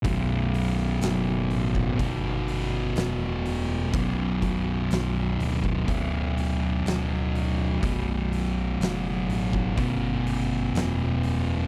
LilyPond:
<<
  \new Staff \with { instrumentName = "Distorted electric guitar" } { \clef bass \time 4/4 \key b \minor \tempo 4 = 62 <b,, fis, b,>2 <b,, fis, b,>2 | <b,, fis, b,>2 <b,, fis, b,>2 | <b,, fis, b,>2 <b,, fis, b,>2 | }
  \new Staff \with { instrumentName = "Fingered electric bass" } { \clef bass \time 4/4 \key b \minor b,,,4 fis,,8 a,,8 g,,4 e,,4 | b,,,4 b,,,8 d,,8 d,,4 d,,4 | b,,,4 fis,,8 a,,8 g,,4 e,,4 | }
  \new DrumStaff \with { instrumentName = "Drums" } \drummode { \time 4/4 <hho bd>8 hho8 <hho sn>8 hho16 bd16 <hho bd>8 hho8 <hho sn>8 hho8 | <hho bd>8 <hho bd>8 <hho sn>8 hho16 bd16 <hho bd>8 hho8 <hho sn>8 hho8 | <hho bd>8 hho8 <hho sn>8 hho16 bd16 <hho bd>8 hho8 <hho sn>8 hho8 | }
>>